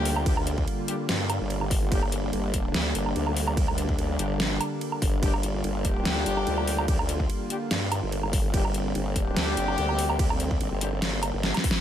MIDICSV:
0, 0, Header, 1, 5, 480
1, 0, Start_track
1, 0, Key_signature, -2, "minor"
1, 0, Tempo, 413793
1, 303, Time_signature, 4, 2, 24, 8
1, 13696, End_track
2, 0, Start_track
2, 0, Title_t, "Brass ensemble"
2, 0, Program_c, 0, 61
2, 0, Note_on_c, 0, 55, 111
2, 0, Note_on_c, 0, 62, 102
2, 0, Note_on_c, 0, 67, 120
2, 276, Note_off_c, 0, 55, 0
2, 276, Note_off_c, 0, 62, 0
2, 276, Note_off_c, 0, 67, 0
2, 303, Note_on_c, 0, 55, 84
2, 303, Note_on_c, 0, 62, 73
2, 303, Note_on_c, 0, 67, 93
2, 378, Note_off_c, 0, 55, 0
2, 378, Note_off_c, 0, 62, 0
2, 379, Note_off_c, 0, 67, 0
2, 1023, Note_on_c, 0, 55, 80
2, 1023, Note_on_c, 0, 62, 75
2, 1023, Note_on_c, 0, 67, 89
2, 1098, Note_off_c, 0, 55, 0
2, 1098, Note_off_c, 0, 62, 0
2, 1098, Note_off_c, 0, 67, 0
2, 2223, Note_on_c, 0, 55, 83
2, 2223, Note_on_c, 0, 62, 73
2, 2223, Note_on_c, 0, 67, 89
2, 2344, Note_off_c, 0, 55, 0
2, 2344, Note_off_c, 0, 62, 0
2, 2344, Note_off_c, 0, 67, 0
2, 4863, Note_on_c, 0, 55, 79
2, 4863, Note_on_c, 0, 62, 72
2, 4863, Note_on_c, 0, 67, 86
2, 4938, Note_off_c, 0, 55, 0
2, 4938, Note_off_c, 0, 62, 0
2, 4938, Note_off_c, 0, 67, 0
2, 6063, Note_on_c, 0, 55, 81
2, 6063, Note_on_c, 0, 62, 75
2, 6063, Note_on_c, 0, 67, 92
2, 6183, Note_off_c, 0, 62, 0
2, 6183, Note_off_c, 0, 67, 0
2, 6184, Note_off_c, 0, 55, 0
2, 6783, Note_on_c, 0, 55, 113
2, 6783, Note_on_c, 0, 62, 101
2, 6783, Note_on_c, 0, 67, 121
2, 7956, Note_off_c, 0, 55, 0
2, 7956, Note_off_c, 0, 62, 0
2, 7956, Note_off_c, 0, 67, 0
2, 7983, Note_on_c, 0, 55, 84
2, 7983, Note_on_c, 0, 62, 76
2, 7983, Note_on_c, 0, 67, 92
2, 8058, Note_off_c, 0, 62, 0
2, 8058, Note_off_c, 0, 67, 0
2, 8059, Note_off_c, 0, 55, 0
2, 8703, Note_on_c, 0, 55, 77
2, 8703, Note_on_c, 0, 62, 73
2, 8703, Note_on_c, 0, 67, 87
2, 8778, Note_off_c, 0, 62, 0
2, 8779, Note_off_c, 0, 55, 0
2, 8779, Note_off_c, 0, 67, 0
2, 9903, Note_on_c, 0, 55, 82
2, 9903, Note_on_c, 0, 62, 75
2, 9903, Note_on_c, 0, 67, 89
2, 10024, Note_off_c, 0, 55, 0
2, 10024, Note_off_c, 0, 62, 0
2, 10024, Note_off_c, 0, 67, 0
2, 10623, Note_on_c, 0, 55, 108
2, 10623, Note_on_c, 0, 62, 101
2, 10623, Note_on_c, 0, 67, 124
2, 11796, Note_off_c, 0, 55, 0
2, 11796, Note_off_c, 0, 62, 0
2, 11796, Note_off_c, 0, 67, 0
2, 11824, Note_on_c, 0, 55, 85
2, 11824, Note_on_c, 0, 62, 76
2, 11824, Note_on_c, 0, 67, 89
2, 11899, Note_off_c, 0, 55, 0
2, 11899, Note_off_c, 0, 62, 0
2, 11899, Note_off_c, 0, 67, 0
2, 12544, Note_on_c, 0, 55, 79
2, 12544, Note_on_c, 0, 62, 70
2, 12544, Note_on_c, 0, 67, 88
2, 12619, Note_off_c, 0, 55, 0
2, 12619, Note_off_c, 0, 62, 0
2, 12619, Note_off_c, 0, 67, 0
2, 13696, End_track
3, 0, Start_track
3, 0, Title_t, "Supersaw synth"
3, 0, Program_c, 1, 81
3, 0, Note_on_c, 1, 50, 84
3, 0, Note_on_c, 1, 55, 76
3, 0, Note_on_c, 1, 58, 77
3, 0, Note_on_c, 1, 65, 87
3, 2209, Note_off_c, 1, 65, 0
3, 2223, Note_on_c, 1, 62, 92
3, 6050, Note_off_c, 1, 62, 0
3, 6063, Note_on_c, 1, 65, 90
3, 9890, Note_off_c, 1, 65, 0
3, 9904, Note_on_c, 1, 60, 87
3, 13696, Note_off_c, 1, 50, 0
3, 13696, Note_off_c, 1, 55, 0
3, 13696, Note_off_c, 1, 58, 0
3, 13696, Note_off_c, 1, 60, 0
3, 13696, End_track
4, 0, Start_track
4, 0, Title_t, "Wobble bass"
4, 0, Program_c, 2, 39
4, 0, Note_on_c, 2, 38, 94
4, 765, Note_off_c, 2, 38, 0
4, 1263, Note_on_c, 2, 43, 94
4, 1610, Note_off_c, 2, 43, 0
4, 1630, Note_on_c, 2, 31, 100
4, 2205, Note_off_c, 2, 31, 0
4, 2223, Note_on_c, 2, 31, 98
4, 2685, Note_off_c, 2, 31, 0
4, 2703, Note_on_c, 2, 31, 100
4, 3165, Note_off_c, 2, 31, 0
4, 3183, Note_on_c, 2, 38, 99
4, 3405, Note_off_c, 2, 38, 0
4, 3423, Note_on_c, 2, 31, 100
4, 3645, Note_off_c, 2, 31, 0
4, 3663, Note_on_c, 2, 38, 93
4, 4605, Note_off_c, 2, 38, 0
4, 4623, Note_on_c, 2, 38, 102
4, 4845, Note_off_c, 2, 38, 0
4, 4863, Note_on_c, 2, 31, 99
4, 5325, Note_off_c, 2, 31, 0
4, 5823, Note_on_c, 2, 31, 99
4, 6045, Note_off_c, 2, 31, 0
4, 6063, Note_on_c, 2, 31, 100
4, 6525, Note_off_c, 2, 31, 0
4, 6543, Note_on_c, 2, 31, 101
4, 7005, Note_off_c, 2, 31, 0
4, 7023, Note_on_c, 2, 38, 98
4, 7245, Note_off_c, 2, 38, 0
4, 7263, Note_on_c, 2, 31, 94
4, 7485, Note_off_c, 2, 31, 0
4, 7503, Note_on_c, 2, 38, 91
4, 8445, Note_off_c, 2, 38, 0
4, 8943, Note_on_c, 2, 43, 95
4, 9290, Note_off_c, 2, 43, 0
4, 9311, Note_on_c, 2, 31, 96
4, 9885, Note_off_c, 2, 31, 0
4, 9903, Note_on_c, 2, 31, 101
4, 10365, Note_off_c, 2, 31, 0
4, 10383, Note_on_c, 2, 31, 98
4, 10845, Note_off_c, 2, 31, 0
4, 10863, Note_on_c, 2, 38, 99
4, 11085, Note_off_c, 2, 38, 0
4, 11103, Note_on_c, 2, 31, 98
4, 11325, Note_off_c, 2, 31, 0
4, 11343, Note_on_c, 2, 38, 92
4, 12285, Note_off_c, 2, 38, 0
4, 12303, Note_on_c, 2, 32, 104
4, 12410, Note_off_c, 2, 32, 0
4, 12431, Note_on_c, 2, 31, 100
4, 13130, Note_off_c, 2, 31, 0
4, 13151, Note_on_c, 2, 31, 99
4, 13371, Note_off_c, 2, 31, 0
4, 13696, End_track
5, 0, Start_track
5, 0, Title_t, "Drums"
5, 63, Note_on_c, 9, 46, 101
5, 179, Note_off_c, 9, 46, 0
5, 190, Note_on_c, 9, 77, 80
5, 303, Note_on_c, 9, 36, 127
5, 303, Note_on_c, 9, 51, 66
5, 306, Note_off_c, 9, 77, 0
5, 419, Note_off_c, 9, 36, 0
5, 419, Note_off_c, 9, 51, 0
5, 430, Note_on_c, 9, 77, 81
5, 543, Note_on_c, 9, 42, 84
5, 546, Note_off_c, 9, 77, 0
5, 659, Note_off_c, 9, 42, 0
5, 671, Note_on_c, 9, 36, 68
5, 783, Note_on_c, 9, 51, 44
5, 787, Note_off_c, 9, 36, 0
5, 899, Note_off_c, 9, 51, 0
5, 1023, Note_on_c, 9, 42, 87
5, 1139, Note_off_c, 9, 42, 0
5, 1263, Note_on_c, 9, 38, 127
5, 1263, Note_on_c, 9, 51, 68
5, 1379, Note_off_c, 9, 38, 0
5, 1379, Note_off_c, 9, 51, 0
5, 1503, Note_on_c, 9, 42, 88
5, 1503, Note_on_c, 9, 77, 82
5, 1619, Note_off_c, 9, 42, 0
5, 1619, Note_off_c, 9, 77, 0
5, 1743, Note_on_c, 9, 51, 48
5, 1859, Note_off_c, 9, 51, 0
5, 1871, Note_on_c, 9, 77, 50
5, 1983, Note_on_c, 9, 36, 113
5, 1983, Note_on_c, 9, 46, 102
5, 1987, Note_off_c, 9, 77, 0
5, 2099, Note_off_c, 9, 36, 0
5, 2099, Note_off_c, 9, 46, 0
5, 2223, Note_on_c, 9, 36, 127
5, 2223, Note_on_c, 9, 51, 65
5, 2339, Note_off_c, 9, 36, 0
5, 2339, Note_off_c, 9, 51, 0
5, 2350, Note_on_c, 9, 77, 81
5, 2463, Note_on_c, 9, 42, 83
5, 2466, Note_off_c, 9, 77, 0
5, 2579, Note_off_c, 9, 42, 0
5, 2703, Note_on_c, 9, 51, 46
5, 2819, Note_off_c, 9, 51, 0
5, 2943, Note_on_c, 9, 36, 64
5, 2943, Note_on_c, 9, 42, 85
5, 3059, Note_off_c, 9, 36, 0
5, 3059, Note_off_c, 9, 42, 0
5, 3183, Note_on_c, 9, 38, 127
5, 3183, Note_on_c, 9, 51, 64
5, 3299, Note_off_c, 9, 38, 0
5, 3299, Note_off_c, 9, 51, 0
5, 3423, Note_on_c, 9, 42, 85
5, 3539, Note_off_c, 9, 42, 0
5, 3551, Note_on_c, 9, 77, 51
5, 3663, Note_on_c, 9, 51, 47
5, 3667, Note_off_c, 9, 77, 0
5, 3779, Note_off_c, 9, 51, 0
5, 3791, Note_on_c, 9, 77, 54
5, 3903, Note_on_c, 9, 46, 93
5, 3907, Note_off_c, 9, 77, 0
5, 4019, Note_off_c, 9, 46, 0
5, 4031, Note_on_c, 9, 77, 83
5, 4143, Note_on_c, 9, 36, 126
5, 4143, Note_on_c, 9, 51, 64
5, 4147, Note_off_c, 9, 77, 0
5, 4259, Note_off_c, 9, 36, 0
5, 4259, Note_off_c, 9, 51, 0
5, 4271, Note_on_c, 9, 77, 87
5, 4383, Note_on_c, 9, 42, 78
5, 4387, Note_off_c, 9, 77, 0
5, 4499, Note_off_c, 9, 42, 0
5, 4510, Note_on_c, 9, 36, 67
5, 4623, Note_on_c, 9, 51, 46
5, 4626, Note_off_c, 9, 36, 0
5, 4739, Note_off_c, 9, 51, 0
5, 4863, Note_on_c, 9, 42, 83
5, 4979, Note_off_c, 9, 42, 0
5, 5103, Note_on_c, 9, 38, 127
5, 5103, Note_on_c, 9, 51, 63
5, 5219, Note_off_c, 9, 38, 0
5, 5219, Note_off_c, 9, 51, 0
5, 5343, Note_on_c, 9, 42, 83
5, 5343, Note_on_c, 9, 77, 83
5, 5459, Note_off_c, 9, 42, 0
5, 5459, Note_off_c, 9, 77, 0
5, 5583, Note_on_c, 9, 51, 48
5, 5699, Note_off_c, 9, 51, 0
5, 5711, Note_on_c, 9, 77, 55
5, 5823, Note_on_c, 9, 36, 109
5, 5823, Note_on_c, 9, 46, 90
5, 5827, Note_off_c, 9, 77, 0
5, 5939, Note_off_c, 9, 36, 0
5, 5939, Note_off_c, 9, 46, 0
5, 6063, Note_on_c, 9, 36, 121
5, 6063, Note_on_c, 9, 51, 66
5, 6179, Note_off_c, 9, 36, 0
5, 6179, Note_off_c, 9, 51, 0
5, 6191, Note_on_c, 9, 77, 87
5, 6303, Note_on_c, 9, 42, 74
5, 6307, Note_off_c, 9, 77, 0
5, 6419, Note_off_c, 9, 42, 0
5, 6543, Note_on_c, 9, 51, 45
5, 6659, Note_off_c, 9, 51, 0
5, 6783, Note_on_c, 9, 36, 61
5, 6783, Note_on_c, 9, 42, 82
5, 6899, Note_off_c, 9, 36, 0
5, 6899, Note_off_c, 9, 42, 0
5, 7023, Note_on_c, 9, 38, 122
5, 7023, Note_on_c, 9, 51, 68
5, 7139, Note_off_c, 9, 38, 0
5, 7139, Note_off_c, 9, 51, 0
5, 7263, Note_on_c, 9, 42, 80
5, 7379, Note_off_c, 9, 42, 0
5, 7391, Note_on_c, 9, 77, 55
5, 7503, Note_on_c, 9, 51, 49
5, 7507, Note_off_c, 9, 77, 0
5, 7619, Note_off_c, 9, 51, 0
5, 7630, Note_on_c, 9, 77, 58
5, 7743, Note_on_c, 9, 46, 93
5, 7746, Note_off_c, 9, 77, 0
5, 7859, Note_off_c, 9, 46, 0
5, 7871, Note_on_c, 9, 77, 88
5, 7983, Note_on_c, 9, 36, 120
5, 7983, Note_on_c, 9, 51, 69
5, 7987, Note_off_c, 9, 77, 0
5, 8099, Note_off_c, 9, 36, 0
5, 8099, Note_off_c, 9, 51, 0
5, 8111, Note_on_c, 9, 77, 86
5, 8223, Note_on_c, 9, 42, 74
5, 8227, Note_off_c, 9, 77, 0
5, 8339, Note_off_c, 9, 42, 0
5, 8351, Note_on_c, 9, 36, 63
5, 8463, Note_on_c, 9, 51, 49
5, 8467, Note_off_c, 9, 36, 0
5, 8579, Note_off_c, 9, 51, 0
5, 8703, Note_on_c, 9, 42, 79
5, 8819, Note_off_c, 9, 42, 0
5, 8943, Note_on_c, 9, 38, 117
5, 8943, Note_on_c, 9, 51, 71
5, 9059, Note_off_c, 9, 38, 0
5, 9059, Note_off_c, 9, 51, 0
5, 9183, Note_on_c, 9, 42, 81
5, 9183, Note_on_c, 9, 77, 88
5, 9299, Note_off_c, 9, 42, 0
5, 9299, Note_off_c, 9, 77, 0
5, 9423, Note_on_c, 9, 51, 50
5, 9539, Note_off_c, 9, 51, 0
5, 9551, Note_on_c, 9, 77, 56
5, 9663, Note_on_c, 9, 36, 109
5, 9663, Note_on_c, 9, 46, 101
5, 9667, Note_off_c, 9, 77, 0
5, 9779, Note_off_c, 9, 36, 0
5, 9779, Note_off_c, 9, 46, 0
5, 9903, Note_on_c, 9, 36, 114
5, 9903, Note_on_c, 9, 51, 74
5, 10019, Note_off_c, 9, 36, 0
5, 10019, Note_off_c, 9, 51, 0
5, 10031, Note_on_c, 9, 77, 82
5, 10143, Note_on_c, 9, 42, 79
5, 10147, Note_off_c, 9, 77, 0
5, 10259, Note_off_c, 9, 42, 0
5, 10383, Note_on_c, 9, 51, 47
5, 10499, Note_off_c, 9, 51, 0
5, 10623, Note_on_c, 9, 36, 60
5, 10623, Note_on_c, 9, 42, 82
5, 10739, Note_off_c, 9, 36, 0
5, 10739, Note_off_c, 9, 42, 0
5, 10864, Note_on_c, 9, 38, 116
5, 10864, Note_on_c, 9, 51, 70
5, 10980, Note_off_c, 9, 38, 0
5, 10980, Note_off_c, 9, 51, 0
5, 11103, Note_on_c, 9, 42, 80
5, 11219, Note_off_c, 9, 42, 0
5, 11231, Note_on_c, 9, 77, 57
5, 11343, Note_on_c, 9, 51, 52
5, 11347, Note_off_c, 9, 77, 0
5, 11459, Note_off_c, 9, 51, 0
5, 11471, Note_on_c, 9, 77, 54
5, 11584, Note_on_c, 9, 46, 99
5, 11587, Note_off_c, 9, 77, 0
5, 11700, Note_off_c, 9, 46, 0
5, 11711, Note_on_c, 9, 77, 80
5, 11823, Note_on_c, 9, 36, 120
5, 11824, Note_on_c, 9, 51, 73
5, 11827, Note_off_c, 9, 77, 0
5, 11939, Note_off_c, 9, 36, 0
5, 11940, Note_off_c, 9, 51, 0
5, 11951, Note_on_c, 9, 77, 80
5, 12063, Note_on_c, 9, 42, 78
5, 12067, Note_off_c, 9, 77, 0
5, 12179, Note_off_c, 9, 42, 0
5, 12191, Note_on_c, 9, 36, 65
5, 12303, Note_on_c, 9, 51, 47
5, 12307, Note_off_c, 9, 36, 0
5, 12419, Note_off_c, 9, 51, 0
5, 12543, Note_on_c, 9, 42, 85
5, 12659, Note_off_c, 9, 42, 0
5, 12783, Note_on_c, 9, 38, 118
5, 12783, Note_on_c, 9, 51, 69
5, 12899, Note_off_c, 9, 38, 0
5, 12899, Note_off_c, 9, 51, 0
5, 13023, Note_on_c, 9, 42, 83
5, 13023, Note_on_c, 9, 77, 82
5, 13139, Note_off_c, 9, 42, 0
5, 13139, Note_off_c, 9, 77, 0
5, 13263, Note_on_c, 9, 38, 72
5, 13263, Note_on_c, 9, 51, 51
5, 13379, Note_off_c, 9, 38, 0
5, 13379, Note_off_c, 9, 51, 0
5, 13391, Note_on_c, 9, 42, 38
5, 13391, Note_on_c, 9, 77, 55
5, 13423, Note_on_c, 9, 38, 87
5, 13503, Note_on_c, 9, 36, 104
5, 13503, Note_on_c, 9, 46, 105
5, 13507, Note_off_c, 9, 42, 0
5, 13507, Note_off_c, 9, 77, 0
5, 13539, Note_off_c, 9, 38, 0
5, 13583, Note_on_c, 9, 38, 101
5, 13619, Note_off_c, 9, 36, 0
5, 13619, Note_off_c, 9, 46, 0
5, 13696, Note_off_c, 9, 38, 0
5, 13696, End_track
0, 0, End_of_file